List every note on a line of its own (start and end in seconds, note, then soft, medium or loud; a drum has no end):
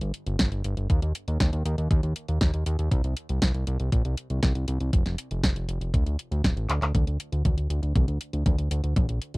0.01 0.12 G1 medium
0.01 closed hi-hat soft
0.14 closed hi-hat medium
0.27 0.37 G1 medium
0.27 closed hi-hat soft
0.39 0.50 G1 loud
0.39 kick loud
0.39 snare loud
0.39 closed hi-hat medium
0.52 0.62 G1 medium
0.52 closed hi-hat soft
0.64 0.75 G1 medium
0.64 closed hi-hat medium
0.77 0.88 G1 medium
0.77 closed hi-hat soft
0.90 1.00 D#2 loud
0.90 kick loud
0.90 closed hi-hat medium
1.02 1.13 D#2 medium
1.02 closed hi-hat soft
1.15 closed hi-hat medium
1.28 1.38 D#2 medium
1.28 closed hi-hat soft
1.40 1.51 D#2 loud
1.40 kick medium
1.40 snare loud
1.40 closed hi-hat medium
1.53 1.63 D#2 medium
1.53 closed hi-hat soft
1.65 1.76 D#2 medium
1.65 closed hi-hat medium
1.78 1.88 D#2 medium
1.78 closed hi-hat soft
1.91 2.01 D#2 loud
1.91 kick loud
1.91 closed hi-hat medium
2.03 2.14 D#2 medium
2.03 closed hi-hat soft
2.16 closed hi-hat medium
2.28 2.39 D#2 medium
2.28 closed hi-hat soft
2.41 2.52 D#2 loud
2.41 kick loud
2.41 snare loud
2.41 closed hi-hat medium
2.54 2.64 D#2 medium
2.54 closed hi-hat soft
2.66 2.77 D#2 medium
2.66 closed hi-hat medium
2.79 2.89 D#2 medium
2.79 closed hi-hat soft
2.91 3.02 C2 loud
2.91 kick loud
2.91 closed hi-hat medium
3.04 3.15 C2 medium
3.04 closed hi-hat soft
3.17 closed hi-hat medium
3.29 3.40 C2 medium
3.29 closed hi-hat soft
3.42 3.52 C2 loud
3.42 kick loud
3.42 snare loud
3.42 closed hi-hat medium
3.54 3.65 C2 medium
3.54 closed hi-hat soft
3.67 3.78 C2 loud
3.67 closed hi-hat medium
3.80 3.90 C2 medium
3.80 closed hi-hat soft
3.92 4.03 A#1 loud
3.92 kick loud
3.92 closed hi-hat medium
4.05 4.15 C2 medium
4.05 closed hi-hat soft
4.17 closed hi-hat medium
4.30 4.41 C2 medium
4.30 closed hi-hat soft
4.43 4.53 C2 loud
4.43 kick medium
4.43 snare loud
4.43 closed hi-hat medium
4.55 4.66 C2 medium
4.55 closed hi-hat soft
4.68 4.78 C2 medium
4.68 closed hi-hat medium
4.80 4.91 C2 medium
4.80 closed hi-hat soft
4.93 5.04 F1 loud
4.93 kick loud
4.93 closed hi-hat medium
5.06 5.16 F1 medium
5.06 snare soft
5.06 closed hi-hat soft
5.18 closed hi-hat medium
5.31 5.41 F1 medium
5.31 closed hi-hat soft
5.43 5.54 F1 medium
5.43 kick loud
5.43 snare loud
5.43 closed hi-hat medium
5.56 5.67 F1 medium
5.56 closed hi-hat soft
5.69 5.79 F1 loud
5.69 closed hi-hat loud
5.81 5.92 F1 medium
5.81 closed hi-hat soft
5.94 6.04 D2 loud
5.94 kick loud
5.94 closed hi-hat medium
6.06 6.17 D2 medium
6.06 closed hi-hat soft
6.19 closed hi-hat medium
6.31 6.42 D2 medium
6.31 closed hi-hat soft
6.44 6.55 D1 loud
6.44 kick medium
6.44 snare loud
6.44 closed hi-hat medium
6.57 6.67 A1 medium
6.57 closed hi-hat soft
6.69 6.80 D2 medium
6.69 clap medium
6.69 closed hi-hat loud
6.82 6.93 D2 medium
6.82 clap medium
6.82 closed hi-hat soft
6.95 7.05 D2 loud
6.95 kick loud
6.95 closed hi-hat medium
6.95 mid tom soft
7.07 7.18 D2 medium
7.07 closed hi-hat soft
7.20 closed hi-hat medium
7.32 7.43 D2 medium
7.32 closed hi-hat soft
7.45 7.56 D2 loud
7.45 kick loud
7.45 closed hi-hat medium
7.45 mid tom soft
7.57 7.68 D2 medium
7.57 closed hi-hat soft
7.70 7.81 D2 medium
7.70 closed hi-hat medium
7.83 7.93 D2 medium
7.83 closed hi-hat soft
7.96 8.06 C2 loud
7.96 kick loud
7.96 closed hi-hat medium
7.96 mid tom medium
8.08 8.19 D2 medium
8.08 closed hi-hat soft
8.21 closed hi-hat medium
8.33 8.44 D2 medium
8.33 closed hi-hat soft
8.46 8.56 D2 loud
8.46 kick loud
8.46 closed hi-hat medium
8.46 mid tom medium
8.59 8.69 D2 medium
8.59 closed hi-hat soft
8.71 8.82 D2 medium
8.71 closed hi-hat loud
8.84 8.94 D2 medium
8.84 closed hi-hat soft
8.96 9.07 A#1 loud
8.96 kick loud
8.96 closed hi-hat medium
8.96 mid tom medium
9.09 9.19 A#1 medium
9.09 closed hi-hat soft
9.22 closed hi-hat medium
9.34 9.38 A#1 medium
9.34 closed hi-hat soft